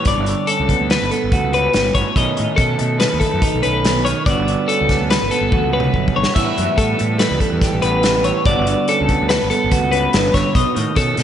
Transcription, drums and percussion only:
0.05 kick, closed hi-hat
0.26 closed hi-hat
0.47 closed hi-hat
0.69 kick, closed hi-hat
0.90 snare, closed hi-hat
1.11 closed hi-hat
1.32 kick, closed hi-hat
1.53 closed hi-hat
1.73 snare, closed hi-hat
1.95 kick, closed hi-hat
2.16 kick, closed hi-hat
2.37 closed hi-hat
2.58 kick, closed hi-hat
2.79 closed hi-hat
3.00 snare, closed hi-hat
3.21 kick, closed hi-hat
3.42 kick, closed hi-hat
3.63 closed hi-hat
3.85 snare, closed hi-hat
4.06 closed hi-hat
4.26 kick, closed hi-hat
4.48 closed hi-hat
4.69 closed hi-hat
4.89 kick, snare, closed hi-hat
5.10 snare, closed hi-hat
5.31 closed hi-hat
5.52 kick, high tom
5.80 mid tom
5.94 kick
6.08 kick
6.23 snare
6.36 kick, closed hi-hat, crash
6.58 closed hi-hat
6.78 kick, closed hi-hat
6.99 closed hi-hat
7.19 snare, closed hi-hat
7.40 kick, closed hi-hat
7.62 kick, snare, closed hi-hat
7.82 closed hi-hat
8.03 snare, closed hi-hat
8.24 closed hi-hat
8.45 kick, closed hi-hat
8.67 closed hi-hat
8.88 closed hi-hat
9.09 kick, closed hi-hat
9.29 snare, closed hi-hat
9.51 closed hi-hat
9.71 kick, closed hi-hat
9.92 closed hi-hat
10.13 snare, closed hi-hat
10.34 kick, snare, closed hi-hat
10.55 kick, closed hi-hat
10.76 closed hi-hat
10.96 kick, closed hi-hat
11.17 snare, closed hi-hat

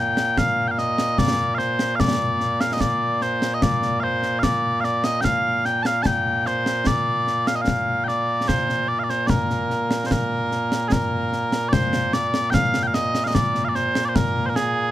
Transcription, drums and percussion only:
0.17 snare
0.38 concert bass drum, snare
0.78 snare
0.98 snare
1.18 concert bass drum, snare
1.59 snare
1.79 snare
2.00 concert bass drum, snare
2.40 snare
2.61 snare
2.81 concert bass drum, snare
3.21 snare
3.42 snare
3.62 concert bass drum, snare
3.82 snare
4.23 snare
4.43 concert bass drum, snare
4.84 snare
5.04 snare
5.24 concert bass drum, snare
5.65 snare
5.85 snare
6.05 concert bass drum, snare
6.46 snare
6.66 snare
6.86 concert bass drum, snare
7.27 snare
7.47 snare
7.68 concert bass drum, snare
8.09 snare
8.49 concert bass drum, snare
8.69 snare
9.10 snare
9.29 concert bass drum, snare
9.50 snare
9.70 snare
9.91 snare
10.11 concert bass drum, snare
10.52 snare
10.72 snare
10.92 concert bass drum, snare
11.33 snare
11.52 snare
11.73 concert bass drum, snare
11.93 snare
12.13 snare
12.34 snare
12.54 concert bass drum, snare
12.74 snare
12.94 snare
13.15 snare
13.35 concert bass drum, snare
13.55 snare
13.75 snare
13.95 snare
14.16 concert bass drum, snare
14.56 snare

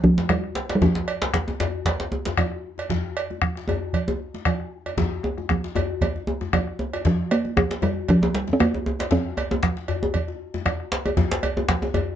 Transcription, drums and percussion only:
0.04 djembe bass
0.18 djembe slap, high conga, djembe bass
0.29 bombo rim, bombo low, cowbell, djembe slap, djembe tone, low conga
0.44 bombo rim
0.55 djembe slap
0.69 cowbell, djembe slap, djembe tone
0.82 bombo rim, bombo low, djembe slap, djembe tone, low conga, djembe bass
0.95 djembe slap
1.08 cowbell
1.22 djembe slap, high conga, djembe tone
1.34 bombo rim, bombo low, djembe slap, low conga
1.47 bombo rim, djembe slap, djembe tone, high conga
1.60 cowbell, djembe slap, djembe tone, djembe bass
1.85 bombo low, cowbell, djembe slap, high conga, low conga
2.00 djembe slap, djembe tone
2.12 djembe tone
2.25 djembe slap, high conga, djembe bass
2.38 bombo rim, bombo low, cowbell, djembe slap, djembe tone, low conga
2.52 bombo rim
2.78 cowbell, djembe tone
2.90 bombo rim, bombo low, djembe slap, djembe bass, low conga
3.17 cowbell
3.30 djembe slap, high conga, djembe tone
3.42 bombo rim, bombo low, djembe slap, low conga
3.56 bombo rim, djembe slap, high conga
3.68 cowbell, djembe tone, djembe bass
3.93 bombo low, cowbell, high conga, low conga
4.08 djembe tone
4.34 djembe slap, high conga
4.45 bombo rim, bombo low, cowbell, djembe slap, djembe tone, low conga
4.60 bombo rim
4.86 cowbell, djembe tone
4.97 bombo low, djembe slap, djembe tone, high conga, djembe bass, low conga
5.23 bombo rim, djembe tone
5.38 bombo rim, djembe slap, djembe tone, high conga
5.49 bombo rim, bombo low, djembe tone, high conga, low conga
5.64 djembe slap
5.75 bombo rim, cowbell, djembe tone, djembe bass
6.01 bombo low, cowbell, high conga, djembe tone, low conga
6.16 djembe tone, high conga
6.27 djembe tone, high conga
6.41 bombo rim, djembe slap, high conga, djembe bass
6.53 bombo rim, bombo low, cowbell, djembe slap, djembe tone, high conga, low conga
6.67 bombo rim
6.79 djembe tone
6.93 cowbell, djembe slap, djembe tone
7.05 bombo rim, bombo low, djembe slap, djembe bass, low conga
7.31 cowbell
7.45 djembe slap, djembe tone, high conga
7.57 bombo rim, bombo low, djembe slap, djembe tone, low conga
7.71 bombo rim, djembe slap, high conga
7.82 cowbell, djembe tone, djembe bass
8.09 bombo low, cowbell, djembe tone, high conga, low conga
8.22 djembe tone
8.35 djembe slap
8.48 djembe slap, high conga, djembe bass
8.60 bombo rim, bombo low, cowbell, djembe slap, djembe tone, low conga
8.74 bombo rim, djembe tone
8.86 djembe tone
8.99 cowbell, djembe slap, djembe tone
9.11 bombo rim, bombo low, djembe slap, djembe bass, low conga
9.37 cowbell, djembe tone
9.51 djembe slap, djembe tone, high conga
9.63 bombo rim, bombo low, djembe slap, low conga
9.77 bombo rim, djembe slap, high conga
9.88 cowbell, djembe tone, djembe bass
10.03 djembe tone
10.14 bombo low, cowbell, high conga, low conga
10.28 djembe tone
10.54 djembe slap, high conga, djembe bass
10.66 bombo rim, bombo low, cowbell, djembe slap, djembe tone, low conga
10.80 bombo rim
10.92 djembe slap
11.06 cowbell, djembe tone
11.17 bombo rim, bombo low, djembe slap, djembe tone, low conga, djembe bass
11.31 djembe slap
11.43 cowbell, djembe tone
11.57 djembe slap, djembe tone, high conga
11.68 bombo rim, bombo low, djembe slap, low conga
11.82 bombo rim, djembe slap, djembe tone
11.94 cowbell, djembe tone, djembe bass

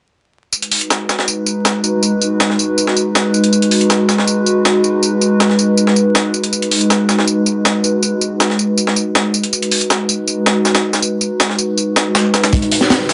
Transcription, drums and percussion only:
0.53 tambourine
0.62 closed hi-hat
0.71 open hi-hat
0.81 closed hi-hat
0.90 snare, tambourine
1.09 snare, tambourine
1.19 snare
1.28 tambourine
1.46 tambourine
1.65 snare, tambourine
1.84 tambourine
2.03 tambourine
2.21 tambourine
2.40 snare, tambourine
2.50 snare
2.59 tambourine
2.78 tambourine
2.87 snare
2.96 tambourine
3.15 snare, tambourine
3.34 tambourine
3.44 closed hi-hat
3.53 tambourine
3.62 closed hi-hat
3.71 open hi-hat
3.81 closed hi-hat
3.90 snare, tambourine
4.09 snare, tambourine
4.18 snare
4.27 tambourine
4.46 tambourine
4.65 snare, tambourine
4.84 tambourine
5.03 tambourine
5.21 tambourine
5.40 snare, tambourine
5.50 snare
5.59 tambourine
5.77 tambourine
5.87 snare
5.96 tambourine
6.15 snare, tambourine
6.34 tambourine
6.43 closed hi-hat
6.53 tambourine
6.62 closed hi-hat
6.71 open hi-hat
6.81 closed hi-hat
6.90 snare, tambourine
7.09 snare, tambourine
7.19 snare
7.28 tambourine
7.46 tambourine
7.65 snare, tambourine
7.84 tambourine
8.03 tambourine
8.21 tambourine
8.40 snare, tambourine
8.50 snare
8.59 tambourine
8.78 tambourine
8.87 snare
8.96 tambourine
9.15 snare, tambourine
9.34 tambourine
9.44 closed hi-hat
9.53 tambourine
9.62 closed hi-hat
9.71 open hi-hat
9.81 closed hi-hat
9.90 snare, tambourine
10.09 tambourine
10.28 tambourine
10.46 snare, tambourine
10.65 snare, tambourine
10.75 snare, tambourine
10.93 snare, tambourine
11.02 tambourine
11.21 tambourine
11.40 snare, tambourine
11.49 snare
11.59 tambourine
11.77 tambourine
11.96 snare, tambourine
12.15 snare, tambourine
12.34 snare, tambourine
12.43 snare, tambourine
12.53 kick, closed hi-hat, tambourine
12.62 closed hi-hat
12.71 closed hi-hat, open hi-hat
12.81 snare, closed hi-hat
12.90 snare, closed hi-hat, tambourine
13.09 snare, closed hi-hat, tambourine

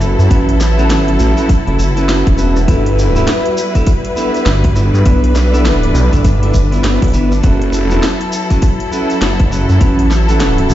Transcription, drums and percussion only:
0.01 cross-stick, shaker
0.20 shaker
0.31 kick, closed hi-hat, shaker
0.49 closed hi-hat
0.60 snare, shaker
0.79 shaker
0.90 snare, closed hi-hat, shaker
1.08 closed hi-hat
1.19 shaker
1.37 closed hi-hat, shaker
1.49 kick, closed hi-hat, shaker
1.68 closed hi-hat
1.79 shaker
1.97 closed hi-hat, shaker
2.09 snare, closed hi-hat, shaker
2.27 kick, closed hi-hat
2.38 shaker
2.56 cross-stick, shaker
2.68 kick, closed hi-hat, shaker
2.86 closed hi-hat
2.99 shaker
3.16 shaker
3.27 snare, closed hi-hat, shaker
3.46 closed hi-hat
3.57 shaker
3.75 kick, cross-stick, closed hi-hat, shaker
3.87 kick, closed hi-hat, shaker
4.05 closed hi-hat
4.17 shaker
4.34 closed hi-hat, shaker
4.46 snare, closed hi-hat, shaker
4.64 kick, closed hi-hat
4.76 cross-stick, shaker
4.95 shaker
5.06 kick, closed hi-hat, shaker
5.24 closed hi-hat
5.35 snare, shaker
5.54 shaker
5.65 snare, closed hi-hat, shaker
5.83 closed hi-hat
5.95 shaker
6.13 kick, closed hi-hat, shaker
6.25 kick, closed hi-hat, shaker
6.43 closed hi-hat
6.54 kick, shaker
6.72 closed hi-hat, shaker
6.84 snare, closed hi-hat, shaker
7.02 kick, closed hi-hat
7.04 closed hi-hat
7.08 closed hi-hat
7.10 closed hi-hat, shaker
7.32 cross-stick, shaker
7.43 kick, closed hi-hat, shaker
7.62 closed hi-hat
7.73 shaker
7.90 shaker
8.03 snare, closed hi-hat, shaker
8.21 closed hi-hat
8.32 shaker
8.50 kick, cross-stick, closed hi-hat, shaker
8.62 kick, closed hi-hat, shaker
8.80 closed hi-hat
8.92 shaker
9.10 closed hi-hat, shaker
9.21 snare, closed hi-hat, shaker
9.40 kick, closed hi-hat
9.51 cross-stick, shaker
9.69 shaker
9.81 kick, closed hi-hat, shaker
9.99 closed hi-hat
10.11 snare, shaker
10.29 shaker
10.40 snare, closed hi-hat, shaker
10.58 closed hi-hat
10.70 shaker

